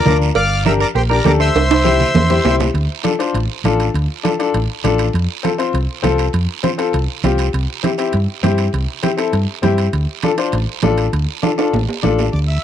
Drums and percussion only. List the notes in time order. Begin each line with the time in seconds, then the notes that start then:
0.06 high conga, low conga, short guiro
0.22 short guiro
0.35 cowbell, long guiro
0.66 high conga, short guiro
0.80 short guiro
0.96 cowbell, long guiro
1.25 high conga, low timbale, short guiro
1.40 short guiro
1.55 cowbell, high timbale, long guiro
1.71 high timbale
1.84 high conga, short guiro
2.00 low conga, short guiro
2.15 cowbell, high conga, low timbale, long guiro
2.30 high conga, low timbale
2.44 low conga, low timbale, short guiro
2.60 low conga, low timbale, short guiro
2.75 high conga, high timbale, long guiro
3.04 high conga, high timbale, short guiro
3.20 high timbale, short guiro
3.34 high conga, high timbale, long guiro
3.65 high conga, high timbale, short guiro
3.80 high timbale, short guiro
3.94 high conga, high timbale, long guiro
4.24 high conga, high timbale, short guiro
4.40 high timbale, short guiro
4.54 high conga, high timbale, long guiro
4.84 high conga, high timbale, short guiro
4.98 high timbale, short guiro
5.13 high conga, high timbale, long guiro
5.43 high conga, high timbale, short guiro
5.58 high timbale, short guiro
5.73 high conga, high timbale, long guiro
6.04 high conga, high timbale, low timbale, short guiro
6.18 high timbale, short guiro
6.33 high conga, high timbale, long guiro
6.63 high conga, high timbale, short guiro
6.78 high timbale, short guiro
6.93 high conga, high timbale, long guiro
7.23 high conga, high timbale, low timbale, short guiro
7.38 high timbale, short guiro
7.53 high conga, high timbale, long guiro
7.83 high conga, high timbale, short guiro
7.98 high timbale, short guiro
8.12 high conga, high timbale, long guiro
8.43 high conga, high timbale, low timbale, short guiro
8.58 high timbale, short guiro
8.73 high conga, high timbale, long guiro
9.03 high conga, high timbale, short guiro
9.18 high timbale, short guiro
9.33 high conga, high timbale, long guiro
9.63 high conga, high timbale, low timbale, short guiro
9.78 high timbale, short guiro
9.93 high conga, high timbale, long guiro
10.23 high conga, high timbale, short guiro
10.38 high timbale, short guiro
10.52 high conga, high timbale, long guiro
10.82 high conga, high timbale, low timbale, short guiro
10.97 high timbale, short guiro
11.13 high conga, high timbale, long guiro
11.43 high conga, high timbale, short guiro
11.58 high timbale, short guiro
11.73 high conga, low timbale, long guiro
11.89 low timbale
12.03 high conga, low timbale, short guiro
12.18 low timbale, short guiro
12.33 high conga, long guiro